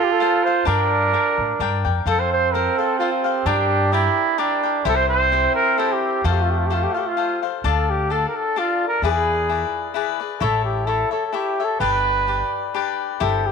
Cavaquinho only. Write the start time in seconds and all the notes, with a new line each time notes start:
Already playing: F4 A4 C5 F5
0.20 F4 A4 C5 F5
0.46 A4 C5 F5
0.65 D4 A#4 D5 G5
1.13 D4 A#4 D5 G5
1.60 D4 A#4 D5 G5
1.85 A#4 D5 G5
2.07 F4 A4 C5 F5
2.54 F4 A4 C5 F5
2.78 A4 C5 F5
3.00 F4 A4 C5 F5
3.24 A4 C5 F5
3.46 D4 A#4 D5 G5
3.92 D4 A#4 D5 G5
4.38 D4 A#4 D5 G5
4.63 A#4 D5 G5
4.85 E4 G4 C5 E5
5.32 E4 G4 C5 E5
5.78 E4 G4 C5 E5
6.25 F4 A4 C5 F5
6.70 F4 A4 C5 F5
6.94 A4 C5 F5
7.17 F4 A4 C5 F5
7.42 A4 C5 F5
7.64 D4 A4 D5 F5
8.10 D4 A4 D5 F5
8.56 D4 A4 D5 F5
9.03 E4 G#4 B4 D5
9.49 E4 G#4 B4 D5
9.94 E4 G#4 B4 D5
10.20 G#4 B4 D5
10.40 E4 A4 C#5 E5
10.87 E4 A4 C#5 E5
11.11 A4 C#5 E5
11.33 E4 A4 C#5 E5
11.60 A4 C#5 E5
11.80 D4 G4 B4 D5
12.27 D4 G4 B4 D5
12.74 D4 G4 B4 D5
13.20 E4 G4 C5 E5